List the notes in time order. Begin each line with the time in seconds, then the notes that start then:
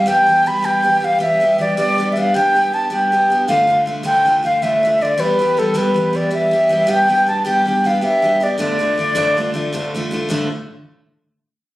0.06 E3 G3 B3 G4 G5
0.27 E3 G3 B3 G4
0.45 E3 G3 B3 G4 B5
0.63 E3 G3 B3 G4 G5
0.82 E3 G3 B3 G4
1.00 E3 G3 B3 G4
1.05 F5
1.19 E3 G3 B3 G4 E5
1.40 E3 G3 B3 G4
1.58 E3 G3 B3 G4 D5
1.77 G3 B3 D4 G4 D5
1.98 G3 B3 D4 G4
2.12 G3 E5
2.17 B3 D4 G4 F5
2.34 G3 B3 D4 G4 G5
2.55 G3 B3 D4 G4
2.72 G3 B3 D4 G4 A5
2.90 G3 B3 D4 G4 G5
3.12 G3 B3 D4 G4
3.30 G3 B3 D4 G4
3.48 D2 A2 D3 A3 D4 F4 F5
3.67 D3 A3 D4 F4
3.86 D3 A3 D4 F4
4.03 D2 A2 D3 A3 D4 F4 G5
4.25 D3 A3 D4 F4
4.43 D3 A3 D4 F4 F5
4.62 D2 A2 D3 A3 D4 F4 E5
4.83 D3 A3 D4 F4
5.01 D3 A3 D4 F4 D5
5.18 E3 G3 B3 G4 B4
5.39 E3 G3 B3 G4
5.57 E3 G3 B3 G4 A4
5.74 E3 G3 B3 G4 B4
5.94 E3 G3 B3 G4
6.13 E3 G3 B3 G4 D5
6.31 E3 G3 B3 G4 E5
6.51 E3 G3 B3 G4
6.69 E3 G3 B3 G4
6.87 G3 B3 D4 G4 G5
7.08 G3 B3 D4 G4
7.26 G3 B3 D4 G4 A5
7.45 G3 B3 D4 G4 G5
7.66 G3 B3 D4 G4 G5
7.84 G3 B3 D4 G4 F5
8.01 G3 B3 D4 G4 E5
8.22 G3 B3 D4 G4
8.40 G3 B3 D4 G4 D5
8.58 D2 A2 D3 A3 D4 F4 D5
8.79 D3 A3 D4 F4
8.98 D3 A3 D4 F4
9.15 D2 A2 D3 A3 D4 F4
9.37 D3 A3 D4 F4
9.54 D3 A3 D4 F4
9.73 D2 A2 D3 A3 D4 F4
9.94 D3 A3 D4 F4
10.11 D3 A3 D4 F4
10.29 D2 A2 D3 A3 D4 F4